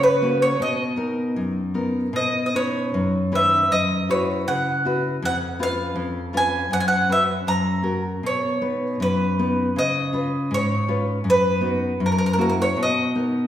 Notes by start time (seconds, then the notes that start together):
Already playing: C#3
0.03 B4
0.22 A#3 C#4 F#4
0.42 C#5
0.60 B2 D#5
0.96 B3 D#4 A#4
1.36 F#2
1.74 B3 D#4 A#4
2.13 B2 D#5
2.46 D#5
2.54 C#4 D#4 B4 C#5
2.94 F#2
3.32 D#3 C#4 B4 E5
3.71 F#2 D#5
4.09 E4 F#4 B4 C#5
4.48 C#3 F#5
4.85 E4 F#4 B4
5.22 F2 F#5
5.59 C#4 F4 B4 F5
5.96 F2
6.33 C#4 F4 B4
6.37 G#5
6.71 F#2 F#5
6.80 G#5
6.88 F#5
7.09 C#4 F#4 B4 E5
7.47 F#2 A#5
7.82 C#4 F#4 A#4
8.23 B2 C#5
8.61 B3 D#4 B4
9.00 F#2 B4
9.39 B3 D#4 B4
9.76 C#3 D#5
10.13 C#4 F4 B4
10.51 G#2 C#5
10.88 C#4 F4 B4
11.24 F#2
11.30 B4
11.61 B3 D#4 F#4
12.00 F#2
12.06 A#4
12.12 A#4
12.18 A#4
12.26 A#4
12.33 A#4
12.38 A#3 E4 F#4 A#4
12.49 A#4
12.62 C#5
12.76 B2
12.83 D#5
13.15 B3 D#4 A#4